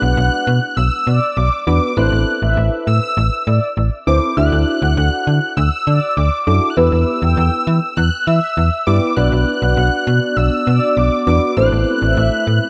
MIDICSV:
0, 0, Header, 1, 6, 480
1, 0, Start_track
1, 0, Tempo, 600000
1, 1577, Time_signature, 4, 2, 24, 8
1, 10157, End_track
2, 0, Start_track
2, 0, Title_t, "Analog synth lead"
2, 0, Program_c, 0, 81
2, 0, Note_on_c, 0, 90, 120
2, 610, Note_off_c, 0, 90, 0
2, 615, Note_on_c, 0, 88, 102
2, 1095, Note_on_c, 0, 86, 92
2, 1107, Note_off_c, 0, 88, 0
2, 1331, Note_off_c, 0, 86, 0
2, 1336, Note_on_c, 0, 86, 91
2, 1575, Note_on_c, 0, 90, 101
2, 1587, Note_off_c, 0, 86, 0
2, 2056, Note_off_c, 0, 90, 0
2, 2298, Note_on_c, 0, 88, 118
2, 2985, Note_off_c, 0, 88, 0
2, 3256, Note_on_c, 0, 86, 88
2, 3480, Note_off_c, 0, 86, 0
2, 3496, Note_on_c, 0, 90, 107
2, 4424, Note_off_c, 0, 90, 0
2, 4455, Note_on_c, 0, 88, 101
2, 4935, Note_on_c, 0, 86, 93
2, 4947, Note_off_c, 0, 88, 0
2, 5169, Note_off_c, 0, 86, 0
2, 5174, Note_on_c, 0, 86, 89
2, 5360, Note_on_c, 0, 90, 76
2, 5372, Note_off_c, 0, 86, 0
2, 5414, Note_on_c, 0, 88, 106
2, 5426, Note_off_c, 0, 90, 0
2, 6369, Note_off_c, 0, 88, 0
2, 6373, Note_on_c, 0, 90, 104
2, 6614, Note_on_c, 0, 88, 98
2, 6626, Note_off_c, 0, 90, 0
2, 7089, Note_off_c, 0, 88, 0
2, 7094, Note_on_c, 0, 86, 95
2, 7318, Note_off_c, 0, 86, 0
2, 7333, Note_on_c, 0, 90, 116
2, 8292, Note_on_c, 0, 88, 107
2, 8304, Note_off_c, 0, 90, 0
2, 8774, Note_on_c, 0, 86, 97
2, 8786, Note_off_c, 0, 88, 0
2, 9009, Note_off_c, 0, 86, 0
2, 9014, Note_on_c, 0, 86, 95
2, 9238, Note_off_c, 0, 86, 0
2, 9255, Note_on_c, 0, 90, 115
2, 10157, Note_off_c, 0, 90, 0
2, 10157, End_track
3, 0, Start_track
3, 0, Title_t, "Analog polysynth"
3, 0, Program_c, 1, 90
3, 17, Note_on_c, 1, 78, 78
3, 355, Note_off_c, 1, 78, 0
3, 855, Note_on_c, 1, 74, 91
3, 1194, Note_off_c, 1, 74, 0
3, 1574, Note_on_c, 1, 72, 104
3, 1660, Note_off_c, 1, 72, 0
3, 1936, Note_on_c, 1, 76, 83
3, 2275, Note_off_c, 1, 76, 0
3, 2776, Note_on_c, 1, 74, 80
3, 2946, Note_off_c, 1, 74, 0
3, 3256, Note_on_c, 1, 72, 85
3, 3342, Note_off_c, 1, 72, 0
3, 3496, Note_on_c, 1, 76, 93
3, 3581, Note_off_c, 1, 76, 0
3, 3856, Note_on_c, 1, 78, 78
3, 4195, Note_off_c, 1, 78, 0
3, 4695, Note_on_c, 1, 74, 92
3, 5034, Note_off_c, 1, 74, 0
3, 5416, Note_on_c, 1, 71, 97
3, 5501, Note_off_c, 1, 71, 0
3, 5777, Note_on_c, 1, 79, 80
3, 6115, Note_off_c, 1, 79, 0
3, 6617, Note_on_c, 1, 76, 81
3, 6787, Note_off_c, 1, 76, 0
3, 7095, Note_on_c, 1, 74, 87
3, 7181, Note_off_c, 1, 74, 0
3, 7336, Note_on_c, 1, 74, 93
3, 7421, Note_off_c, 1, 74, 0
3, 7695, Note_on_c, 1, 78, 76
3, 8034, Note_off_c, 1, 78, 0
3, 8536, Note_on_c, 1, 74, 93
3, 8874, Note_off_c, 1, 74, 0
3, 9255, Note_on_c, 1, 72, 100
3, 9341, Note_off_c, 1, 72, 0
3, 9616, Note_on_c, 1, 76, 81
3, 9955, Note_off_c, 1, 76, 0
3, 10157, End_track
4, 0, Start_track
4, 0, Title_t, "Synth keys"
4, 0, Program_c, 2, 88
4, 0, Note_on_c, 2, 59, 79
4, 0, Note_on_c, 2, 62, 71
4, 0, Note_on_c, 2, 66, 71
4, 0, Note_on_c, 2, 71, 86
4, 464, Note_off_c, 2, 59, 0
4, 464, Note_off_c, 2, 62, 0
4, 464, Note_off_c, 2, 66, 0
4, 464, Note_off_c, 2, 71, 0
4, 1336, Note_on_c, 2, 59, 77
4, 1336, Note_on_c, 2, 66, 68
4, 1336, Note_on_c, 2, 71, 86
4, 1337, Note_on_c, 2, 62, 72
4, 1538, Note_off_c, 2, 59, 0
4, 1538, Note_off_c, 2, 62, 0
4, 1538, Note_off_c, 2, 66, 0
4, 1538, Note_off_c, 2, 71, 0
4, 1576, Note_on_c, 2, 64, 68
4, 1577, Note_on_c, 2, 60, 77
4, 1577, Note_on_c, 2, 69, 73
4, 1577, Note_on_c, 2, 71, 87
4, 2383, Note_off_c, 2, 64, 0
4, 2384, Note_off_c, 2, 60, 0
4, 2384, Note_off_c, 2, 69, 0
4, 2384, Note_off_c, 2, 71, 0
4, 3256, Note_on_c, 2, 60, 76
4, 3256, Note_on_c, 2, 64, 67
4, 3257, Note_on_c, 2, 69, 73
4, 3257, Note_on_c, 2, 71, 85
4, 3458, Note_off_c, 2, 60, 0
4, 3458, Note_off_c, 2, 64, 0
4, 3458, Note_off_c, 2, 69, 0
4, 3458, Note_off_c, 2, 71, 0
4, 3496, Note_on_c, 2, 62, 80
4, 3496, Note_on_c, 2, 64, 71
4, 3496, Note_on_c, 2, 66, 71
4, 3497, Note_on_c, 2, 69, 84
4, 4304, Note_off_c, 2, 62, 0
4, 4304, Note_off_c, 2, 64, 0
4, 4304, Note_off_c, 2, 66, 0
4, 4304, Note_off_c, 2, 69, 0
4, 5177, Note_on_c, 2, 62, 78
4, 5177, Note_on_c, 2, 64, 73
4, 5177, Note_on_c, 2, 66, 73
4, 5177, Note_on_c, 2, 69, 86
4, 5378, Note_off_c, 2, 62, 0
4, 5379, Note_off_c, 2, 64, 0
4, 5379, Note_off_c, 2, 66, 0
4, 5379, Note_off_c, 2, 69, 0
4, 5417, Note_on_c, 2, 59, 79
4, 5417, Note_on_c, 2, 64, 69
4, 5417, Note_on_c, 2, 67, 72
4, 5417, Note_on_c, 2, 71, 89
4, 6224, Note_off_c, 2, 59, 0
4, 6224, Note_off_c, 2, 64, 0
4, 6224, Note_off_c, 2, 67, 0
4, 6224, Note_off_c, 2, 71, 0
4, 7095, Note_on_c, 2, 59, 73
4, 7095, Note_on_c, 2, 67, 68
4, 7095, Note_on_c, 2, 71, 81
4, 7096, Note_on_c, 2, 64, 70
4, 7298, Note_off_c, 2, 59, 0
4, 7298, Note_off_c, 2, 64, 0
4, 7298, Note_off_c, 2, 67, 0
4, 7298, Note_off_c, 2, 71, 0
4, 7335, Note_on_c, 2, 59, 76
4, 7335, Note_on_c, 2, 62, 69
4, 7335, Note_on_c, 2, 66, 69
4, 7336, Note_on_c, 2, 71, 88
4, 8143, Note_off_c, 2, 59, 0
4, 8143, Note_off_c, 2, 62, 0
4, 8143, Note_off_c, 2, 66, 0
4, 8143, Note_off_c, 2, 71, 0
4, 9015, Note_on_c, 2, 66, 69
4, 9016, Note_on_c, 2, 59, 74
4, 9016, Note_on_c, 2, 62, 70
4, 9016, Note_on_c, 2, 71, 83
4, 9218, Note_off_c, 2, 59, 0
4, 9218, Note_off_c, 2, 62, 0
4, 9218, Note_off_c, 2, 66, 0
4, 9218, Note_off_c, 2, 71, 0
4, 9256, Note_on_c, 2, 60, 76
4, 9256, Note_on_c, 2, 64, 71
4, 9256, Note_on_c, 2, 69, 72
4, 9256, Note_on_c, 2, 71, 88
4, 10064, Note_off_c, 2, 60, 0
4, 10064, Note_off_c, 2, 64, 0
4, 10064, Note_off_c, 2, 69, 0
4, 10064, Note_off_c, 2, 71, 0
4, 10157, End_track
5, 0, Start_track
5, 0, Title_t, "Glass harmonica"
5, 0, Program_c, 3, 92
5, 7335, Note_on_c, 3, 62, 63
5, 7336, Note_on_c, 3, 59, 73
5, 7336, Note_on_c, 3, 66, 63
5, 7336, Note_on_c, 3, 74, 76
5, 9237, Note_off_c, 3, 59, 0
5, 9237, Note_off_c, 3, 62, 0
5, 9237, Note_off_c, 3, 66, 0
5, 9237, Note_off_c, 3, 74, 0
5, 9257, Note_on_c, 3, 57, 72
5, 9257, Note_on_c, 3, 60, 63
5, 9257, Note_on_c, 3, 64, 67
5, 9258, Note_on_c, 3, 71, 79
5, 10157, Note_off_c, 3, 57, 0
5, 10157, Note_off_c, 3, 60, 0
5, 10157, Note_off_c, 3, 64, 0
5, 10157, Note_off_c, 3, 71, 0
5, 10157, End_track
6, 0, Start_track
6, 0, Title_t, "FM bass"
6, 0, Program_c, 4, 39
6, 16, Note_on_c, 4, 35, 100
6, 118, Note_off_c, 4, 35, 0
6, 136, Note_on_c, 4, 35, 112
6, 238, Note_off_c, 4, 35, 0
6, 376, Note_on_c, 4, 47, 105
6, 478, Note_off_c, 4, 47, 0
6, 616, Note_on_c, 4, 35, 102
6, 718, Note_off_c, 4, 35, 0
6, 855, Note_on_c, 4, 47, 96
6, 957, Note_off_c, 4, 47, 0
6, 1096, Note_on_c, 4, 35, 96
6, 1197, Note_off_c, 4, 35, 0
6, 1336, Note_on_c, 4, 40, 96
6, 1437, Note_off_c, 4, 40, 0
6, 1576, Note_on_c, 4, 33, 109
6, 1678, Note_off_c, 4, 33, 0
6, 1696, Note_on_c, 4, 33, 99
6, 1797, Note_off_c, 4, 33, 0
6, 1937, Note_on_c, 4, 33, 99
6, 2038, Note_off_c, 4, 33, 0
6, 2055, Note_on_c, 4, 33, 108
6, 2157, Note_off_c, 4, 33, 0
6, 2296, Note_on_c, 4, 45, 91
6, 2398, Note_off_c, 4, 45, 0
6, 2536, Note_on_c, 4, 33, 107
6, 2638, Note_off_c, 4, 33, 0
6, 2776, Note_on_c, 4, 45, 100
6, 2878, Note_off_c, 4, 45, 0
6, 3016, Note_on_c, 4, 33, 96
6, 3118, Note_off_c, 4, 33, 0
6, 3257, Note_on_c, 4, 38, 89
6, 3358, Note_off_c, 4, 38, 0
6, 3497, Note_on_c, 4, 38, 105
6, 3598, Note_off_c, 4, 38, 0
6, 3616, Note_on_c, 4, 38, 99
6, 3718, Note_off_c, 4, 38, 0
6, 3856, Note_on_c, 4, 38, 103
6, 3957, Note_off_c, 4, 38, 0
6, 3977, Note_on_c, 4, 38, 104
6, 4078, Note_off_c, 4, 38, 0
6, 4217, Note_on_c, 4, 50, 89
6, 4318, Note_off_c, 4, 50, 0
6, 4456, Note_on_c, 4, 38, 114
6, 4558, Note_off_c, 4, 38, 0
6, 4697, Note_on_c, 4, 50, 95
6, 4798, Note_off_c, 4, 50, 0
6, 4936, Note_on_c, 4, 38, 101
6, 5038, Note_off_c, 4, 38, 0
6, 5176, Note_on_c, 4, 42, 90
6, 5278, Note_off_c, 4, 42, 0
6, 5417, Note_on_c, 4, 40, 109
6, 5518, Note_off_c, 4, 40, 0
6, 5536, Note_on_c, 4, 40, 95
6, 5637, Note_off_c, 4, 40, 0
6, 5776, Note_on_c, 4, 40, 100
6, 5878, Note_off_c, 4, 40, 0
6, 5896, Note_on_c, 4, 40, 110
6, 5998, Note_off_c, 4, 40, 0
6, 6137, Note_on_c, 4, 52, 102
6, 6238, Note_off_c, 4, 52, 0
6, 6377, Note_on_c, 4, 40, 111
6, 6478, Note_off_c, 4, 40, 0
6, 6618, Note_on_c, 4, 52, 99
6, 6719, Note_off_c, 4, 52, 0
6, 6857, Note_on_c, 4, 40, 102
6, 6958, Note_off_c, 4, 40, 0
6, 7097, Note_on_c, 4, 43, 90
6, 7198, Note_off_c, 4, 43, 0
6, 7337, Note_on_c, 4, 35, 109
6, 7438, Note_off_c, 4, 35, 0
6, 7456, Note_on_c, 4, 35, 98
6, 7558, Note_off_c, 4, 35, 0
6, 7696, Note_on_c, 4, 35, 97
6, 7798, Note_off_c, 4, 35, 0
6, 7816, Note_on_c, 4, 35, 107
6, 7917, Note_off_c, 4, 35, 0
6, 8056, Note_on_c, 4, 47, 105
6, 8158, Note_off_c, 4, 47, 0
6, 8295, Note_on_c, 4, 35, 101
6, 8397, Note_off_c, 4, 35, 0
6, 8536, Note_on_c, 4, 47, 101
6, 8637, Note_off_c, 4, 47, 0
6, 8776, Note_on_c, 4, 35, 95
6, 8877, Note_off_c, 4, 35, 0
6, 9015, Note_on_c, 4, 40, 96
6, 9117, Note_off_c, 4, 40, 0
6, 9256, Note_on_c, 4, 33, 106
6, 9358, Note_off_c, 4, 33, 0
6, 9377, Note_on_c, 4, 33, 99
6, 9478, Note_off_c, 4, 33, 0
6, 9616, Note_on_c, 4, 33, 96
6, 9718, Note_off_c, 4, 33, 0
6, 9735, Note_on_c, 4, 33, 111
6, 9837, Note_off_c, 4, 33, 0
6, 9976, Note_on_c, 4, 45, 96
6, 10078, Note_off_c, 4, 45, 0
6, 10157, End_track
0, 0, End_of_file